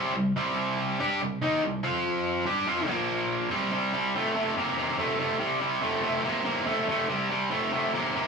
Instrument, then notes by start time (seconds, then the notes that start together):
overdriven electric guitar
Already playing: C3 G3 C4
0.14 C3 G3
0.36 C3 G3 C4
1.00 G3 D4 G4
1.21 C3 G3
1.42 D#3 A#3 D#4
1.64 C3 G3
1.83 F3 C4 F4
2.46 G3 D4 G4
2.67 F3 C4 F4
2.88 A#2 F3 A#3
3.50 C3 G3 C4
3.72 C3 G3
3.93 C3 G3
4.16 C3 A3
4.36 C3 A3
4.57 C3 A#3
4.77 C3 A#3
4.98 C3 A3
5.19 C3 A3
5.40 C3 G3
5.61 C3 G3
5.83 C3 A3
6.03 C3 A3
6.24 C3 A#3
6.45 C3 A#3
6.66 C3 A3
6.89 C3 A3
7.09 C3 G3
7.30 C3 G3
7.50 C3 A3
7.72 C3 A3
7.94 C3 A#3
8.15 C3 A#3